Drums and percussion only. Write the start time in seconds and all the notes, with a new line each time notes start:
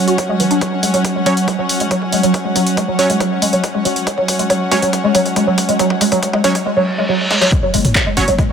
0.08 closed hi-hat
0.18 kick, closed hi-hat
0.40 open hi-hat
0.51 closed hi-hat
0.61 kick, closed hi-hat
0.83 open hi-hat
0.94 closed hi-hat, mid tom
1.05 kick, closed hi-hat
1.26 open hi-hat
1.37 closed hi-hat
1.48 kick, closed hi-hat, mid tom
1.69 open hi-hat
1.80 closed hi-hat
1.91 kick, closed hi-hat
2.02 mid tom
2.12 open hi-hat
2.23 closed hi-hat
2.34 kick, closed hi-hat
2.56 mid tom, open hi-hat
2.67 closed hi-hat
2.77 kick, closed hi-hat
2.99 open hi-hat
3.10 closed hi-hat, mid tom
3.20 kick, closed hi-hat
3.42 open hi-hat
3.53 closed hi-hat
3.64 kick, closed hi-hat, mid tom
3.85 open hi-hat
3.96 closed hi-hat
4.07 kick, closed hi-hat
4.18 mid tom
4.28 kick, open hi-hat
4.39 closed hi-hat
4.50 kick, closed hi-hat
4.71 kick, mid tom, open hi-hat
4.82 closed hi-hat
4.93 kick, closed hi-hat
5.15 kick, open hi-hat
5.26 closed hi-hat, mid tom
5.36 kick, closed hi-hat
5.58 kick, open hi-hat
5.69 closed hi-hat
5.79 kick, closed hi-hat, mid tom
5.90 kick
6.01 kick, open hi-hat
6.12 kick, closed hi-hat
6.23 kick, closed hi-hat
6.33 kick, mid tom
6.44 kick, open hi-hat
6.55 kick, closed hi-hat
7.31 snare
7.41 snare
7.52 kick, closed hi-hat
7.74 open hi-hat
7.85 closed hi-hat, mid tom
7.95 kick, clap, closed hi-hat
8.17 open hi-hat
8.28 closed hi-hat
8.38 kick, closed hi-hat, mid tom